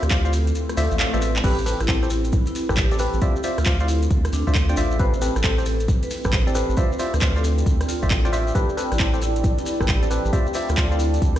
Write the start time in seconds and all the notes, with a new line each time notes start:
Already playing: C4 E4 F4 A4
0.03 D2 G4, cross-stick, closed hi-hat, shekere
0.11 F4 C5 D5 F5, kick, clap, shekere
0.25 F4 C5 D5 F5, closed hi-hat, shekere
0.33 open hi-hat, shekere
0.47 closed hi-hat, shekere
0.55 closed hi-hat, swell, shekere
0.69 cross-stick, closed hi-hat, shekere
0.77 D2 F4 A4 C5 D5 E5, open hi-hat, shekere
0.91 A1, shekere
0.99 F4 C5 D5 F5, clap, shekere
1.14 A1 F4 B4 C5 D5 E5, closed hi-hat, shekere
1.22 F4 C5 D5 E5, open hi-hat, shekere
1.36 clap, closed hi-hat, shekere
1.44 A1 C4 G4 A4 B4, kick, closed hi-hat, crash, shekere
1.58 shekere
1.66 C4 G4 A4 B4, open hi-hat, shekere
1.80 A1 E4, cross-stick, closed hi-hat, shekere
1.88 C4 G4 A4 C5, kick, clap, shekere
2.03 C4 G4 A4 C5, closed hi-hat, shekere
2.10 E4, open hi-hat, shekere
2.24 closed hi-hat, shekere
2.32 kick, closed hi-hat, shekere
2.46 E4, closed hi-hat, shekere
2.55 open hi-hat, shekere
2.69 A1 C4 G4 A4 B4, kick, cross-stick, shekere
2.77 G4, kick, clap, shekere
2.91 C4 G4 A4 D5, closed hi-hat, shekere
2.99 C4 G4 A4 B4, open hi-hat, shekere
3.13 A1, shekere
3.22 F4 G4 A4 C5 D5 E5, kick, closed hi-hat, shekere
3.36 shekere
3.43 F4 C5 D5 E5 C6, open hi-hat, shekere
3.58 D2 F4, cross-stick, closed hi-hat, shekere
3.65 F4 C5 D5 F5, kick, clap, shekere
3.80 E4 F4 C5 D5 F5, closed hi-hat, shekere
3.88 open hi-hat, shekere
4.03 closed hi-hat, shekere
4.11 D2, kick, closed hi-hat, shekere
4.25 cross-stick, closed hi-hat, shekere
4.33 D2 D4, open hi-hat, shekere
4.47 D2 F4 C5 D5 E5, kick, shekere
4.55 kick, clap, shekere
4.69 D4 F4 C5 D5 G5, closed hi-hat, shekere
4.77 A1 F4 C5 D5 E5, open hi-hat, shekere
4.91 shekere
4.99 C4 E4 G4 A4 B4 C5, kick, closed hi-hat, shekere
5.13 D5, shekere
5.22 C4 G4 A4 B4, open hi-hat, shekere
5.36 A1 A4, cross-stick, closed hi-hat, shekere
5.44 C4 G4 A4 C5, kick, clap, shekere
5.58 C4 G4 A4 C5, closed hi-hat, shekere
5.66 A4, open hi-hat, shekere
5.80 G5, closed hi-hat, shekere
5.88 kick, closed hi-hat, shekere
6.03 B4, closed hi-hat, shekere
6.10 open hi-hat, shekere
6.24 A1 C4 G4 A4 B4, kick, cross-stick, shekere
6.32 C5, kick, clap, shekere
6.47 C4 G4 A4 D5, closed hi-hat, shekere
6.55 C4 G4 A4 B4 C5, open hi-hat, shekere
6.69 A1, shekere
6.77 F4 A4 C5 D5 E5, kick, closed hi-hat, shekere
6.92 shekere
6.99 F4 C5 D5 E5, open hi-hat, shekere
7.14 D2 B4, cross-stick, closed hi-hat, shekere
7.22 F4 C5 D5 F5, kick, clap, shekere
7.36 F4 A4 C5 D5 F5, closed hi-hat, shekere
7.44 open hi-hat, shekere
7.58 closed hi-hat, shekere
7.66 D2, kick, closed hi-hat, shekere
7.81 cross-stick, closed hi-hat, shekere
7.88 F4, open hi-hat, shekere
8.03 A1 F4 C5 D5 E5, kick, shekere
8.10 kick, clap, shekere
8.25 F4 C5 D5 G5, closed hi-hat, shekere
8.33 F4 C5 D5 E5, open hi-hat, shekere
8.47 shekere
8.55 C4 G4 A4 B4, kick, closed hi-hat, shekere
8.69 shekere
8.77 C4 G4 A4 B4, open hi-hat, shekere
8.92 A1 E4, cross-stick, closed hi-hat, shekere
8.99 C4 G4 A4 C5, kick, clap, shekere
9.14 C4 G4 A4 C5, closed hi-hat, shekere
9.22 E4, open hi-hat, shekere
9.36 closed hi-hat, shekere
9.44 kick, closed hi-hat, shekere
9.58 E4, closed hi-hat, shekere
9.66 open hi-hat, shekere
9.80 A1 C4 G4 A4 B4, kick, cross-stick, shekere
9.88 G4, kick, clap, shekere
10.03 C4 G4 A4 D5, closed hi-hat, shekere
10.11 C4 G4 A4 B4, open hi-hat, shekere
10.25 A1, shekere
10.33 F4 G4 A4 C5 D5 E5, kick, closed hi-hat, shekere
10.47 shekere
10.54 F4 C5 D5 E5, open hi-hat, shekere
10.69 D2 F4, cross-stick, closed hi-hat, shekere
10.77 F4 C5 D5 F5, kick, clap, shekere
10.91 E4 F4 C5 D5 F5, closed hi-hat, shekere
10.99 open hi-hat, shekere
11.14 closed hi-hat, shekere
11.22 D2, kick, closed hi-hat, shekere
11.36 cross-stick, closed hi-hat